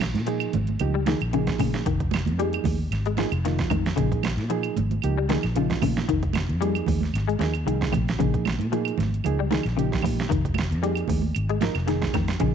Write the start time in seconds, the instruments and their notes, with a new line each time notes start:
Already playing: fingered electric bass A#1
0.00 snare, closed hi-hat, high conga, claves
0.14 fingered electric bass A#2, snare, closed hi-hat, high conga
0.26 reed electric piano F3 A#3 D#4 G#4, clean electric guitar F3, closed hi-hat
0.40 closed hi-hat, claves
0.53 fingered electric bass G#1, closed hi-hat, high conga, low conga
0.67 closed hi-hat, high conga
0.79 fingered electric bass C#2, reed electric piano F3 A#3 D#4 G4, closed hi-hat, low conga, claves
0.94 clean electric guitar G3
1.06 clean electric guitar D#3, reed electric piano F3 A#3 D#4 G#4, snare, closed hi-hat, high conga
1.21 fingered electric bass A#1, closed hi-hat, claves
1.33 clean electric guitar C#3, reed electric piano F3 A#3 D#4 G#4, closed hi-hat
1.47 kick, snare, closed hi-hat
1.59 fingered electric bass A#2, clean electric guitar C#3, kick, open hi-hat, high conga, low conga, claves
1.74 snare, closed hi-hat
1.86 fingered electric bass F1, clean electric guitar D#3, kick, closed hi-hat
2.00 kick, closed hi-hat
2.11 snare, closed hi-hat, high conga, claves
2.26 fingered electric bass F2, closed hi-hat, high conga
2.38 reed electric piano F3 A#3 D#4 G#4, clean electric guitar G3, closed hi-hat
2.53 closed hi-hat, claves
2.64 fingered electric bass D#2, kick, open hi-hat, high conga, low conga
2.91 fingered electric bass G#1, snare, closed hi-hat, claves
3.06 clean electric guitar G#3, closed hi-hat
3.17 clean electric guitar F3, reed electric piano F3 A#3 D#4 G#4, snare, closed hi-hat, high conga
3.32 fingered electric bass F1, closed hi-hat, claves
3.45 clean electric guitar D#3, reed electric piano F3 A#3 D#4 F4, snare, closed hi-hat
3.59 kick, snare, closed hi-hat
3.70 fingered electric bass F2, clean electric guitar D#3, kick, closed hi-hat, high conga, low conga, claves
3.86 snare, closed hi-hat
3.96 fingered electric bass A#1, clean electric guitar C#3, reed electric piano F3 A#3 D#4 G#4, kick, closed hi-hat
4.12 kick, closed hi-hat
4.23 snare, closed hi-hat, high conga, claves
4.37 fingered electric bass A#2, snare, closed hi-hat
4.50 clean electric guitar F3, reed electric piano F3 A#3 D#4 G#4, closed hi-hat
4.63 closed hi-hat, claves
4.77 fingered electric bass G#1, closed hi-hat, high conga, low conga
4.91 closed hi-hat, high conga
5.02 fingered electric bass C#2, reed electric piano F3 A#3 D#4 G4, closed hi-hat, claves
5.18 clean electric guitar G3
5.29 clean electric guitar D#3, reed electric piano F3 A#3 D#4 G#4, snare, closed hi-hat, high conga
5.43 fingered electric bass A#1, snare, closed hi-hat, claves
5.55 clean electric guitar C#3, reed electric piano F3 A#3 D#4 F4, closed hi-hat
5.70 kick, snare, closed hi-hat
5.82 fingered electric bass A#2, clean electric guitar C#3, kick, open hi-hat, high conga, low conga, claves
5.97 snare, closed hi-hat
6.08 fingered electric bass F1, clean electric guitar D#3, kick, closed hi-hat
6.23 kick, closed hi-hat
6.33 snare, closed hi-hat, high conga, claves
6.49 fingered electric bass F2, closed hi-hat
6.61 reed electric piano F3 A#3 D#4 G#4, clean electric guitar G3, closed hi-hat
6.75 closed hi-hat, claves
6.87 fingered electric bass D#2, kick, open hi-hat, high conga, low conga
7.01 snare, high conga
7.14 fingered electric bass G#1, snare, closed hi-hat, claves
7.28 clean electric guitar G#3, closed hi-hat
7.39 fingered electric bass D#2, reed electric piano F3 A#3 D#4 G#4, muted clean electric guitar stroke, snare, closed hi-hat, high conga
7.54 closed hi-hat, claves
7.66 fingered electric bass C2, clean electric guitar D#3, reed electric piano F3 A#3 D#4 G#4, closed hi-hat
7.81 kick, snare, closed hi-hat
7.92 fingered electric bass A#1, clean electric guitar C3, kick, closed hi-hat, high conga, low conga, claves
8.08 snare, closed hi-hat
8.18 fingered electric bass A#1, clean electric guitar C#3, reed electric piano F3 A#3 D#4 G#4, kick, closed hi-hat
8.34 kick, closed hi-hat
8.45 snare, closed hi-hat, high conga, claves
8.58 fingered electric bass A#2, closed hi-hat, high conga
8.72 reed electric piano F3 A#3 D#4 G#4, clean electric guitar F3, closed hi-hat
8.85 closed hi-hat, claves
8.98 fingered electric bass G#1, snare, closed hi-hat, high conga, low conga
9.14 closed hi-hat
9.24 fingered electric bass C#2, reed electric piano F3 A#3 D#4 G#4, closed hi-hat, low conga, claves
9.39 clean electric guitar G3
9.51 clean electric guitar D#3, reed electric piano F3 A#3 D#4 G#4, snare, closed hi-hat, high conga
9.63 fingered electric bass A#1, snare, closed hi-hat, claves
9.77 clean electric guitar C#3, reed electric piano F3 A#3 D#4 G4, closed hi-hat
9.92 kick, snare, closed hi-hat
10.02 fingered electric bass A#2, muted clean electric guitar stroke, kick, open hi-hat, high conga, low conga, claves
10.19 snare, closed hi-hat
10.29 fingered electric bass F1, clean electric guitar D#3, kick, closed hi-hat
10.45 kick, closed hi-hat
10.54 closed hi-hat, high conga, claves
10.59 snare
10.71 fingered electric bass F2, closed hi-hat
10.82 reed electric piano F3 A#3 D#4 G#4, clean electric guitar G3, closed hi-hat
10.95 closed hi-hat, claves
11.08 fingered electric bass D#2, kick, open hi-hat, high conga, low conga
11.22 high conga
11.35 fingered electric bass G#1, closed hi-hat, claves
11.49 clean electric guitar G#3, closed hi-hat
11.61 reed electric piano F3 A#3 D#4 A#4, clean electric guitar F3, snare, closed hi-hat, high conga
11.75 fingered electric bass F1, snare, closed hi-hat, claves
11.86 clean electric guitar D#3, reed electric piano F3 A#3 D#4 G#4, snare, closed hi-hat
12.02 kick, snare, closed hi-hat
12.13 fingered electric bass F2, clean electric guitar D#3, kick, snare, closed hi-hat, high conga, low conga, claves
12.28 snare, closed hi-hat
12.39 fingered electric bass A#1, clean electric guitar C#3, reed electric piano F3 A#3 D#4 G#4, kick, closed hi-hat